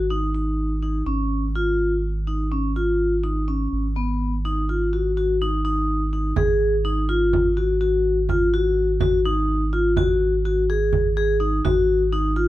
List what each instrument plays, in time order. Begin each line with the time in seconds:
Already playing: analog synth bass G#1
0.10 vibraphone D#4
0.34 vibraphone D#4
0.83 vibraphone D#4
1.06 analog synth bass G#1, vibraphone C#4
1.55 vibraphone F4
2.27 vibraphone D#4
2.52 vibraphone C#4
2.76 vibraphone F4
3.24 vibraphone D#4
3.48 vibraphone C#4
3.73 analog synth bass G#1
3.96 vibraphone B3
4.45 vibraphone D#4
4.69 vibraphone F4
4.93 vibraphone F#4
5.17 vibraphone F#4
5.42 vibraphone D#4
5.65 vibraphone D#4
6.13 vibraphone D#4
6.36 analog synth bass G#1, vibraphone G#4, frame drum
6.85 vibraphone D#4, frame drum
7.09 vibraphone F4
7.33 frame drum
7.57 vibraphone F#4
7.81 vibraphone F#4
8.29 vibraphone F4, frame drum
8.54 vibraphone F#4
9.00 vibraphone F#4, frame drum
9.25 vibraphone D#4
9.49 frame drum
9.73 vibraphone F4
9.97 vibraphone F#4, frame drum
10.45 vibraphone F#4
10.70 vibraphone G#4
10.93 frame drum
11.17 vibraphone G#4
11.40 vibraphone D#4
11.65 analog synth bass G#1, vibraphone F#4, frame drum
12.12 vibraphone D#4, frame drum
12.36 vibraphone F4